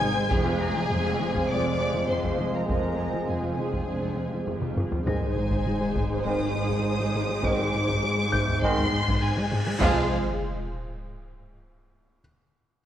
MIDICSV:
0, 0, Header, 1, 14, 480
1, 0, Start_track
1, 0, Tempo, 594059
1, 248, Time_signature, 4, 2, 24, 8
1, 10386, End_track
2, 0, Start_track
2, 0, Title_t, "Grand piano"
2, 0, Program_c, 0, 0
2, 0, Control_c, 0, 64, 127
2, 262, Control_c, 0, 64, 0
2, 407, Control_c, 0, 64, 127
2, 489, Note_on_c, 0, 94, 52
2, 493, Note_on_c, 0, 82, 46
2, 1896, Note_off_c, 0, 94, 0
2, 1899, Note_off_c, 0, 82, 0
2, 4095, Note_on_c, 0, 94, 43
2, 4104, Control_c, 0, 64, 0
2, 4253, Control_c, 0, 64, 127
2, 5499, Note_off_c, 0, 94, 0
2, 6725, Note_on_c, 0, 91, 87
2, 7894, Note_off_c, 0, 91, 0
2, 7945, Control_c, 0, 64, 0
2, 8087, Control_c, 0, 64, 127
2, 9865, Control_c, 0, 64, 0
2, 10386, End_track
3, 0, Start_track
3, 0, Title_t, "Violin section"
3, 0, Program_c, 1, 48
3, 0, Note_on_c, 1, 92, 118
3, 250, Note_on_c, 1, 80, 107
3, 251, Note_off_c, 1, 92, 0
3, 1209, Note_off_c, 1, 80, 0
3, 1210, Note_on_c, 1, 86, 102
3, 1689, Note_off_c, 1, 86, 0
3, 1689, Note_on_c, 1, 84, 73
3, 2049, Note_off_c, 1, 84, 0
3, 2054, Note_on_c, 1, 82, 51
3, 2159, Note_off_c, 1, 82, 0
3, 2169, Note_on_c, 1, 82, 61
3, 2639, Note_off_c, 1, 82, 0
3, 2652, Note_on_c, 1, 80, 48
3, 3850, Note_off_c, 1, 80, 0
3, 4086, Note_on_c, 1, 80, 73
3, 5015, Note_off_c, 1, 80, 0
3, 5050, Note_on_c, 1, 87, 96
3, 5990, Note_off_c, 1, 87, 0
3, 6013, Note_on_c, 1, 86, 114
3, 6964, Note_on_c, 1, 84, 127
3, 6971, Note_off_c, 1, 86, 0
3, 7437, Note_off_c, 1, 84, 0
3, 7448, Note_on_c, 1, 80, 105
3, 7928, Note_off_c, 1, 80, 0
3, 7929, Note_on_c, 1, 77, 100
3, 8197, Note_off_c, 1, 77, 0
3, 10386, End_track
4, 0, Start_track
4, 0, Title_t, "Violin section"
4, 0, Program_c, 2, 48
4, 0, Note_on_c, 2, 80, 101
4, 237, Note_off_c, 2, 80, 0
4, 243, Note_on_c, 2, 68, 90
4, 1205, Note_off_c, 2, 68, 0
4, 1206, Note_on_c, 2, 74, 82
4, 1685, Note_on_c, 2, 72, 60
4, 1687, Note_off_c, 2, 74, 0
4, 2047, Note_off_c, 2, 72, 0
4, 2049, Note_on_c, 2, 70, 45
4, 2159, Note_off_c, 2, 70, 0
4, 2169, Note_on_c, 2, 70, 53
4, 2639, Note_off_c, 2, 70, 0
4, 2653, Note_on_c, 2, 68, 40
4, 3851, Note_off_c, 2, 68, 0
4, 4091, Note_on_c, 2, 68, 53
4, 4091, Note_on_c, 2, 72, 49
4, 7736, Note_off_c, 2, 68, 0
4, 7736, Note_off_c, 2, 72, 0
4, 7930, Note_on_c, 2, 72, 79
4, 7931, Note_on_c, 2, 68, 80
4, 8197, Note_off_c, 2, 72, 0
4, 8198, Note_off_c, 2, 68, 0
4, 10386, End_track
5, 0, Start_track
5, 0, Title_t, "Analog synth pad"
5, 0, Program_c, 3, 89
5, 0, Note_on_c, 3, 56, 74
5, 0, Note_on_c, 3, 60, 72
5, 0, Note_on_c, 3, 68, 77
5, 0, Note_on_c, 3, 72, 74
5, 216, Note_off_c, 3, 56, 0
5, 217, Note_off_c, 3, 60, 0
5, 217, Note_off_c, 3, 68, 0
5, 217, Note_off_c, 3, 72, 0
5, 251, Note_on_c, 3, 56, 69
5, 252, Note_on_c, 3, 60, 73
5, 252, Note_on_c, 3, 68, 70
5, 254, Note_on_c, 3, 72, 75
5, 4058, Note_off_c, 3, 56, 0
5, 4058, Note_off_c, 3, 60, 0
5, 4058, Note_off_c, 3, 68, 0
5, 4059, Note_off_c, 3, 72, 0
5, 4086, Note_on_c, 3, 68, 62
5, 4087, Note_on_c, 3, 56, 63
5, 4088, Note_on_c, 3, 72, 62
5, 4089, Note_on_c, 3, 63, 63
5, 7895, Note_off_c, 3, 56, 0
5, 7895, Note_off_c, 3, 68, 0
5, 7896, Note_off_c, 3, 63, 0
5, 7896, Note_off_c, 3, 72, 0
5, 7925, Note_on_c, 3, 65, 90
5, 7925, Note_on_c, 3, 72, 89
5, 7926, Note_on_c, 3, 56, 87
5, 7928, Note_on_c, 3, 68, 88
5, 8194, Note_off_c, 3, 65, 0
5, 8195, Note_off_c, 3, 56, 0
5, 8195, Note_off_c, 3, 72, 0
5, 8196, Note_off_c, 3, 68, 0
5, 10386, End_track
6, 0, Start_track
6, 0, Title_t, "French horn section"
6, 0, Program_c, 4, 60
6, 0, Note_on_c, 4, 60, 73
6, 0, Note_on_c, 4, 72, 74
6, 215, Note_off_c, 4, 60, 0
6, 215, Note_off_c, 4, 72, 0
6, 250, Note_on_c, 4, 60, 87
6, 255, Note_on_c, 4, 72, 86
6, 2569, Note_off_c, 4, 60, 0
6, 2571, Note_off_c, 4, 72, 0
6, 2653, Note_on_c, 4, 65, 52
6, 2874, Note_off_c, 4, 65, 0
6, 2889, Note_on_c, 4, 63, 44
6, 3122, Note_on_c, 4, 62, 44
6, 3124, Note_off_c, 4, 63, 0
6, 3363, Note_on_c, 4, 60, 40
6, 3365, Note_off_c, 4, 62, 0
6, 3601, Note_on_c, 4, 63, 43
6, 3606, Note_off_c, 4, 60, 0
6, 3840, Note_off_c, 4, 63, 0
6, 3850, Note_on_c, 4, 65, 36
6, 4085, Note_on_c, 4, 60, 54
6, 4085, Note_on_c, 4, 72, 55
6, 4089, Note_off_c, 4, 65, 0
6, 4253, Note_off_c, 4, 60, 0
6, 4254, Note_off_c, 4, 72, 0
6, 5048, Note_on_c, 4, 60, 56
6, 5050, Note_on_c, 4, 72, 61
6, 5215, Note_off_c, 4, 60, 0
6, 5217, Note_off_c, 4, 72, 0
6, 6009, Note_on_c, 4, 60, 70
6, 6009, Note_on_c, 4, 72, 71
6, 6176, Note_off_c, 4, 60, 0
6, 6176, Note_off_c, 4, 72, 0
6, 6967, Note_on_c, 4, 72, 84
6, 6968, Note_on_c, 4, 60, 82
6, 7135, Note_off_c, 4, 60, 0
6, 7135, Note_off_c, 4, 72, 0
6, 7925, Note_on_c, 4, 60, 79
6, 7927, Note_on_c, 4, 72, 80
6, 8130, Note_off_c, 4, 60, 0
6, 8131, Note_off_c, 4, 72, 0
6, 10386, End_track
7, 0, Start_track
7, 0, Title_t, "Viola section"
7, 0, Program_c, 5, 48
7, 0, Note_on_c, 5, 63, 67
7, 0, Note_on_c, 5, 68, 63
7, 118, Note_on_c, 5, 60, 61
7, 118, Note_on_c, 5, 72, 61
7, 122, Note_off_c, 5, 63, 0
7, 123, Note_off_c, 5, 68, 0
7, 238, Note_on_c, 5, 56, 71
7, 239, Note_on_c, 5, 68, 69
7, 243, Note_off_c, 5, 60, 0
7, 243, Note_off_c, 5, 72, 0
7, 354, Note_off_c, 5, 56, 0
7, 355, Note_off_c, 5, 68, 0
7, 356, Note_on_c, 5, 60, 59
7, 356, Note_on_c, 5, 65, 60
7, 473, Note_on_c, 5, 68, 61
7, 475, Note_on_c, 5, 56, 58
7, 482, Note_off_c, 5, 60, 0
7, 482, Note_off_c, 5, 65, 0
7, 598, Note_on_c, 5, 65, 56
7, 600, Note_on_c, 5, 60, 56
7, 601, Note_off_c, 5, 68, 0
7, 602, Note_off_c, 5, 56, 0
7, 723, Note_off_c, 5, 65, 0
7, 723, Note_on_c, 5, 56, 61
7, 724, Note_off_c, 5, 60, 0
7, 724, Note_on_c, 5, 68, 61
7, 837, Note_off_c, 5, 56, 0
7, 838, Note_off_c, 5, 68, 0
7, 845, Note_on_c, 5, 60, 56
7, 846, Note_on_c, 5, 65, 55
7, 966, Note_on_c, 5, 56, 53
7, 966, Note_on_c, 5, 68, 54
7, 967, Note_off_c, 5, 60, 0
7, 967, Note_off_c, 5, 65, 0
7, 1082, Note_on_c, 5, 65, 50
7, 1084, Note_on_c, 5, 60, 49
7, 1087, Note_off_c, 5, 56, 0
7, 1087, Note_off_c, 5, 68, 0
7, 1205, Note_off_c, 5, 65, 0
7, 1206, Note_off_c, 5, 60, 0
7, 1207, Note_on_c, 5, 56, 52
7, 1207, Note_on_c, 5, 68, 56
7, 1319, Note_off_c, 5, 56, 0
7, 1319, Note_off_c, 5, 68, 0
7, 1326, Note_on_c, 5, 60, 48
7, 1330, Note_on_c, 5, 65, 49
7, 1444, Note_on_c, 5, 56, 49
7, 1446, Note_on_c, 5, 68, 47
7, 1447, Note_off_c, 5, 60, 0
7, 1449, Note_off_c, 5, 65, 0
7, 1566, Note_off_c, 5, 56, 0
7, 1567, Note_off_c, 5, 68, 0
7, 1568, Note_on_c, 5, 60, 45
7, 1569, Note_on_c, 5, 65, 43
7, 1683, Note_on_c, 5, 56, 48
7, 1683, Note_on_c, 5, 68, 48
7, 1688, Note_off_c, 5, 60, 0
7, 1689, Note_off_c, 5, 65, 0
7, 1797, Note_off_c, 5, 56, 0
7, 1797, Note_off_c, 5, 68, 0
7, 1799, Note_on_c, 5, 65, 42
7, 1800, Note_on_c, 5, 60, 42
7, 1922, Note_on_c, 5, 56, 41
7, 1923, Note_on_c, 5, 68, 40
7, 1924, Note_off_c, 5, 60, 0
7, 1924, Note_off_c, 5, 65, 0
7, 2040, Note_on_c, 5, 65, 36
7, 2041, Note_on_c, 5, 60, 37
7, 2045, Note_off_c, 5, 56, 0
7, 2045, Note_off_c, 5, 68, 0
7, 2162, Note_on_c, 5, 68, 43
7, 2163, Note_on_c, 5, 56, 39
7, 2164, Note_off_c, 5, 65, 0
7, 2165, Note_off_c, 5, 60, 0
7, 2277, Note_off_c, 5, 56, 0
7, 2277, Note_off_c, 5, 68, 0
7, 2279, Note_on_c, 5, 60, 34
7, 2283, Note_on_c, 5, 65, 36
7, 2400, Note_on_c, 5, 56, 33
7, 2401, Note_on_c, 5, 68, 33
7, 2404, Note_off_c, 5, 60, 0
7, 2406, Note_off_c, 5, 65, 0
7, 2514, Note_on_c, 5, 60, 34
7, 2514, Note_on_c, 5, 65, 33
7, 2524, Note_off_c, 5, 56, 0
7, 2525, Note_off_c, 5, 68, 0
7, 2640, Note_on_c, 5, 56, 36
7, 2641, Note_off_c, 5, 60, 0
7, 2641, Note_off_c, 5, 65, 0
7, 2644, Note_on_c, 5, 68, 35
7, 2756, Note_off_c, 5, 56, 0
7, 2757, Note_off_c, 5, 68, 0
7, 2764, Note_on_c, 5, 60, 33
7, 2764, Note_on_c, 5, 65, 31
7, 2883, Note_on_c, 5, 56, 32
7, 2883, Note_on_c, 5, 68, 34
7, 2886, Note_off_c, 5, 60, 0
7, 2886, Note_off_c, 5, 65, 0
7, 3005, Note_off_c, 5, 56, 0
7, 3006, Note_off_c, 5, 68, 0
7, 3010, Note_on_c, 5, 60, 29
7, 3012, Note_on_c, 5, 65, 29
7, 3129, Note_off_c, 5, 60, 0
7, 3130, Note_off_c, 5, 65, 0
7, 3133, Note_on_c, 5, 56, 34
7, 3133, Note_on_c, 5, 68, 34
7, 3242, Note_off_c, 5, 56, 0
7, 3242, Note_off_c, 5, 68, 0
7, 3248, Note_on_c, 5, 60, 31
7, 3249, Note_on_c, 5, 65, 30
7, 3366, Note_on_c, 5, 56, 29
7, 3366, Note_on_c, 5, 68, 32
7, 3368, Note_off_c, 5, 60, 0
7, 3368, Note_off_c, 5, 65, 0
7, 3486, Note_on_c, 5, 60, 29
7, 3486, Note_on_c, 5, 65, 28
7, 3487, Note_off_c, 5, 56, 0
7, 3487, Note_off_c, 5, 68, 0
7, 3607, Note_off_c, 5, 60, 0
7, 3607, Note_off_c, 5, 65, 0
7, 3607, Note_on_c, 5, 56, 32
7, 3607, Note_on_c, 5, 68, 34
7, 3719, Note_off_c, 5, 56, 0
7, 3719, Note_off_c, 5, 68, 0
7, 3719, Note_on_c, 5, 65, 30
7, 3720, Note_on_c, 5, 60, 29
7, 3840, Note_on_c, 5, 68, 31
7, 3841, Note_on_c, 5, 56, 31
7, 3844, Note_off_c, 5, 60, 0
7, 3844, Note_off_c, 5, 65, 0
7, 3964, Note_off_c, 5, 68, 0
7, 3965, Note_off_c, 5, 56, 0
7, 3967, Note_on_c, 5, 65, 32
7, 3968, Note_on_c, 5, 60, 33
7, 4083, Note_on_c, 5, 63, 54
7, 4085, Note_on_c, 5, 56, 55
7, 4088, Note_off_c, 5, 60, 0
7, 4088, Note_off_c, 5, 65, 0
7, 7732, Note_off_c, 5, 63, 0
7, 7733, Note_off_c, 5, 56, 0
7, 7924, Note_on_c, 5, 56, 83
7, 7924, Note_on_c, 5, 65, 84
7, 8194, Note_off_c, 5, 56, 0
7, 8194, Note_off_c, 5, 65, 0
7, 10386, End_track
8, 0, Start_track
8, 0, Title_t, "Trombone section"
8, 0, Program_c, 6, 61
8, 0, Note_on_c, 6, 51, 78
8, 0, Note_on_c, 6, 56, 73
8, 215, Note_off_c, 6, 56, 0
8, 216, Note_off_c, 6, 51, 0
8, 249, Note_on_c, 6, 56, 82
8, 251, Note_on_c, 6, 53, 86
8, 3816, Note_off_c, 6, 56, 0
8, 3817, Note_off_c, 6, 53, 0
8, 4085, Note_on_c, 6, 51, 51
8, 4086, Note_on_c, 6, 56, 52
8, 4253, Note_off_c, 6, 51, 0
8, 4254, Note_off_c, 6, 56, 0
8, 5042, Note_on_c, 6, 51, 54
8, 5042, Note_on_c, 6, 56, 60
8, 5211, Note_off_c, 6, 56, 0
8, 5212, Note_off_c, 6, 51, 0
8, 6003, Note_on_c, 6, 56, 66
8, 6007, Note_on_c, 6, 51, 66
8, 6172, Note_off_c, 6, 56, 0
8, 6175, Note_off_c, 6, 51, 0
8, 6963, Note_on_c, 6, 51, 83
8, 6965, Note_on_c, 6, 56, 87
8, 7132, Note_off_c, 6, 51, 0
8, 7134, Note_off_c, 6, 56, 0
8, 7923, Note_on_c, 6, 53, 84
8, 7925, Note_on_c, 6, 56, 84
8, 8129, Note_off_c, 6, 53, 0
8, 8130, Note_off_c, 6, 56, 0
8, 10386, End_track
9, 0, Start_track
9, 0, Title_t, "Analog synth bass"
9, 0, Program_c, 7, 38
9, 6, Note_on_c, 7, 56, 65
9, 79, Note_off_c, 7, 56, 0
9, 128, Note_on_c, 7, 56, 68
9, 200, Note_off_c, 7, 56, 0
9, 249, Note_on_c, 7, 41, 93
9, 321, Note_off_c, 7, 41, 0
9, 368, Note_on_c, 7, 41, 68
9, 440, Note_off_c, 7, 41, 0
9, 485, Note_on_c, 7, 41, 65
9, 558, Note_off_c, 7, 41, 0
9, 602, Note_on_c, 7, 53, 67
9, 676, Note_off_c, 7, 53, 0
9, 723, Note_on_c, 7, 41, 92
9, 796, Note_off_c, 7, 41, 0
9, 842, Note_on_c, 7, 41, 61
9, 916, Note_off_c, 7, 41, 0
9, 962, Note_on_c, 7, 53, 61
9, 1036, Note_off_c, 7, 53, 0
9, 1081, Note_on_c, 7, 41, 88
9, 1155, Note_off_c, 7, 41, 0
9, 1202, Note_on_c, 7, 41, 61
9, 1276, Note_off_c, 7, 41, 0
9, 1321, Note_on_c, 7, 41, 63
9, 1395, Note_off_c, 7, 41, 0
9, 1441, Note_on_c, 7, 41, 85
9, 1515, Note_off_c, 7, 41, 0
9, 1560, Note_on_c, 7, 53, 61
9, 1634, Note_off_c, 7, 53, 0
9, 1682, Note_on_c, 7, 41, 60
9, 1756, Note_off_c, 7, 41, 0
9, 1801, Note_on_c, 7, 41, 75
9, 1875, Note_off_c, 7, 41, 0
9, 1921, Note_on_c, 7, 53, 57
9, 1995, Note_off_c, 7, 53, 0
9, 2045, Note_on_c, 7, 53, 59
9, 2118, Note_off_c, 7, 53, 0
9, 2170, Note_on_c, 7, 41, 77
9, 2242, Note_off_c, 7, 41, 0
9, 2290, Note_on_c, 7, 41, 53
9, 2362, Note_off_c, 7, 41, 0
9, 2407, Note_on_c, 7, 41, 52
9, 2479, Note_off_c, 7, 41, 0
9, 2528, Note_on_c, 7, 53, 54
9, 2600, Note_off_c, 7, 53, 0
9, 2649, Note_on_c, 7, 41, 75
9, 2721, Note_off_c, 7, 41, 0
9, 2773, Note_on_c, 7, 41, 53
9, 2844, Note_off_c, 7, 41, 0
9, 2892, Note_on_c, 7, 53, 49
9, 2963, Note_off_c, 7, 53, 0
9, 3010, Note_on_c, 7, 41, 79
9, 3081, Note_off_c, 7, 41, 0
9, 3134, Note_on_c, 7, 41, 52
9, 3204, Note_off_c, 7, 41, 0
9, 3247, Note_on_c, 7, 41, 54
9, 3320, Note_off_c, 7, 41, 0
9, 3370, Note_on_c, 7, 41, 72
9, 3442, Note_off_c, 7, 41, 0
9, 3489, Note_on_c, 7, 53, 51
9, 3561, Note_off_c, 7, 53, 0
9, 3610, Note_on_c, 7, 41, 56
9, 3682, Note_off_c, 7, 41, 0
9, 3728, Note_on_c, 7, 41, 70
9, 3800, Note_off_c, 7, 41, 0
9, 3850, Note_on_c, 7, 53, 51
9, 3921, Note_off_c, 7, 53, 0
9, 3968, Note_on_c, 7, 53, 52
9, 4040, Note_off_c, 7, 53, 0
9, 4089, Note_on_c, 7, 44, 82
9, 4161, Note_off_c, 7, 44, 0
9, 4209, Note_on_c, 7, 56, 60
9, 4281, Note_off_c, 7, 56, 0
9, 4328, Note_on_c, 7, 44, 58
9, 4400, Note_off_c, 7, 44, 0
9, 4447, Note_on_c, 7, 44, 84
9, 4519, Note_off_c, 7, 44, 0
9, 4572, Note_on_c, 7, 56, 60
9, 4643, Note_off_c, 7, 56, 0
9, 4693, Note_on_c, 7, 56, 59
9, 4763, Note_off_c, 7, 56, 0
9, 4812, Note_on_c, 7, 44, 81
9, 4883, Note_off_c, 7, 44, 0
9, 4929, Note_on_c, 7, 44, 61
9, 5001, Note_off_c, 7, 44, 0
9, 5048, Note_on_c, 7, 44, 86
9, 5120, Note_off_c, 7, 44, 0
9, 5168, Note_on_c, 7, 44, 63
9, 5240, Note_off_c, 7, 44, 0
9, 5288, Note_on_c, 7, 44, 59
9, 5360, Note_off_c, 7, 44, 0
9, 5408, Note_on_c, 7, 44, 85
9, 5480, Note_off_c, 7, 44, 0
9, 5525, Note_on_c, 7, 44, 66
9, 5598, Note_off_c, 7, 44, 0
9, 5648, Note_on_c, 7, 56, 62
9, 5720, Note_off_c, 7, 56, 0
9, 5769, Note_on_c, 7, 44, 83
9, 5841, Note_off_c, 7, 44, 0
9, 5887, Note_on_c, 7, 56, 66
9, 5960, Note_off_c, 7, 56, 0
9, 6007, Note_on_c, 7, 44, 100
9, 6080, Note_off_c, 7, 44, 0
9, 6129, Note_on_c, 7, 56, 67
9, 6201, Note_off_c, 7, 56, 0
9, 6246, Note_on_c, 7, 44, 65
9, 6319, Note_off_c, 7, 44, 0
9, 6364, Note_on_c, 7, 44, 95
9, 6437, Note_off_c, 7, 44, 0
9, 6485, Note_on_c, 7, 56, 71
9, 6558, Note_off_c, 7, 56, 0
9, 6612, Note_on_c, 7, 56, 69
9, 6683, Note_off_c, 7, 56, 0
9, 6726, Note_on_c, 7, 44, 93
9, 6799, Note_off_c, 7, 44, 0
9, 6843, Note_on_c, 7, 44, 78
9, 6916, Note_off_c, 7, 44, 0
9, 6965, Note_on_c, 7, 44, 99
9, 7038, Note_off_c, 7, 44, 0
9, 7087, Note_on_c, 7, 44, 72
9, 7159, Note_off_c, 7, 44, 0
9, 7209, Note_on_c, 7, 44, 75
9, 7281, Note_off_c, 7, 44, 0
9, 7331, Note_on_c, 7, 44, 101
9, 7402, Note_off_c, 7, 44, 0
9, 7449, Note_on_c, 7, 44, 76
9, 7521, Note_off_c, 7, 44, 0
9, 7567, Note_on_c, 7, 56, 78
9, 7640, Note_off_c, 7, 56, 0
9, 7689, Note_on_c, 7, 44, 101
9, 7761, Note_off_c, 7, 44, 0
9, 7807, Note_on_c, 7, 56, 67
9, 7880, Note_off_c, 7, 56, 0
9, 10386, End_track
10, 0, Start_track
10, 0, Title_t, "Cello section"
10, 0, Program_c, 8, 48
10, 0, Note_on_c, 8, 44, 81
10, 193, Note_off_c, 8, 44, 0
10, 246, Note_on_c, 8, 41, 84
10, 671, Note_off_c, 8, 41, 0
10, 729, Note_on_c, 8, 41, 71
10, 1152, Note_off_c, 8, 41, 0
10, 1207, Note_on_c, 8, 41, 69
10, 1631, Note_off_c, 8, 41, 0
10, 1689, Note_on_c, 8, 41, 57
10, 2112, Note_off_c, 8, 41, 0
10, 2171, Note_on_c, 8, 41, 51
10, 2593, Note_off_c, 8, 41, 0
10, 2648, Note_on_c, 8, 41, 42
10, 3072, Note_off_c, 8, 41, 0
10, 3131, Note_on_c, 8, 41, 42
10, 3553, Note_off_c, 8, 41, 0
10, 3607, Note_on_c, 8, 41, 39
10, 4031, Note_off_c, 8, 41, 0
10, 4087, Note_on_c, 8, 44, 58
10, 7734, Note_off_c, 8, 44, 0
10, 7924, Note_on_c, 8, 41, 90
10, 8194, Note_off_c, 8, 41, 0
10, 10386, End_track
11, 0, Start_track
11, 0, Title_t, "Double bass section"
11, 0, Program_c, 10, 48
11, 0, Note_on_c, 10, 32, 79
11, 189, Note_off_c, 10, 32, 0
11, 244, Note_on_c, 10, 29, 82
11, 670, Note_off_c, 10, 29, 0
11, 730, Note_on_c, 10, 29, 75
11, 1152, Note_off_c, 10, 29, 0
11, 1208, Note_on_c, 10, 29, 74
11, 1631, Note_off_c, 10, 29, 0
11, 1688, Note_on_c, 10, 29, 56
11, 2111, Note_off_c, 10, 29, 0
11, 2166, Note_on_c, 10, 29, 48
11, 2591, Note_off_c, 10, 29, 0
11, 2648, Note_on_c, 10, 29, 43
11, 3072, Note_off_c, 10, 29, 0
11, 3130, Note_on_c, 10, 29, 44
11, 3553, Note_off_c, 10, 29, 0
11, 3612, Note_on_c, 10, 29, 39
11, 4034, Note_off_c, 10, 29, 0
11, 4093, Note_on_c, 10, 32, 56
11, 7737, Note_off_c, 10, 32, 0
11, 7931, Note_on_c, 10, 29, 85
11, 8198, Note_off_c, 10, 29, 0
11, 10386, End_track
12, 0, Start_track
12, 0, Title_t, "Cymbal swell"
12, 0, Program_c, 11, 119
12, 6003, Note_on_c, 11, 60, 68
12, 7926, Note_off_c, 11, 60, 0
12, 10386, End_track
13, 0, Start_track
13, 0, Title_t, "Sub drop"
13, 0, Program_c, 12, 103
13, 4083, Note_on_c, 12, 60, 64
13, 6006, Note_off_c, 12, 60, 0
13, 7924, Note_on_c, 12, 60, 82
13, 9846, Note_off_c, 12, 60, 0
13, 10386, End_track
14, 0, Start_track
14, 0, Title_t, "Taiko and cinematic ensemble drums"
14, 12, Note_on_c, 9, 47, 64
14, 93, Note_off_c, 9, 47, 0
14, 253, Note_on_c, 9, 41, 101
14, 333, Note_off_c, 9, 41, 0
14, 1091, Note_on_c, 9, 41, 77
14, 1171, Note_off_c, 9, 41, 0
14, 1812, Note_on_c, 9, 41, 70
14, 1893, Note_off_c, 9, 41, 0
14, 1937, Note_on_c, 9, 47, 53
14, 2017, Note_off_c, 9, 47, 0
14, 2174, Note_on_c, 9, 41, 83
14, 2255, Note_off_c, 9, 41, 0
14, 3012, Note_on_c, 9, 41, 68
14, 3093, Note_off_c, 9, 41, 0
14, 3612, Note_on_c, 9, 45, 68
14, 3693, Note_off_c, 9, 45, 0
14, 3733, Note_on_c, 9, 47, 74
14, 3814, Note_off_c, 9, 47, 0
14, 3850, Note_on_c, 9, 45, 73
14, 3931, Note_off_c, 9, 45, 0
14, 3973, Note_on_c, 9, 43, 82
14, 4053, Note_off_c, 9, 43, 0
14, 4091, Note_on_c, 9, 41, 93
14, 4171, Note_off_c, 9, 41, 0
14, 4450, Note_on_c, 9, 41, 68
14, 4531, Note_off_c, 9, 41, 0
14, 4810, Note_on_c, 9, 41, 75
14, 4891, Note_off_c, 9, 41, 0
14, 5049, Note_on_c, 9, 41, 68
14, 5130, Note_off_c, 9, 41, 0
14, 5411, Note_on_c, 9, 41, 73
14, 5492, Note_off_c, 9, 41, 0
14, 6010, Note_on_c, 9, 41, 98
14, 6091, Note_off_c, 9, 41, 0
14, 6372, Note_on_c, 9, 41, 81
14, 6453, Note_off_c, 9, 41, 0
14, 6731, Note_on_c, 9, 41, 80
14, 6812, Note_off_c, 9, 41, 0
14, 6852, Note_on_c, 9, 43, 54
14, 6933, Note_off_c, 9, 43, 0
14, 6971, Note_on_c, 9, 41, 81
14, 7052, Note_off_c, 9, 41, 0
14, 7094, Note_on_c, 9, 43, 51
14, 7175, Note_off_c, 9, 43, 0
14, 7333, Note_on_c, 9, 41, 81
14, 7413, Note_off_c, 9, 41, 0
14, 7928, Note_on_c, 9, 41, 106
14, 8009, Note_off_c, 9, 41, 0
14, 10386, End_track
0, 0, End_of_file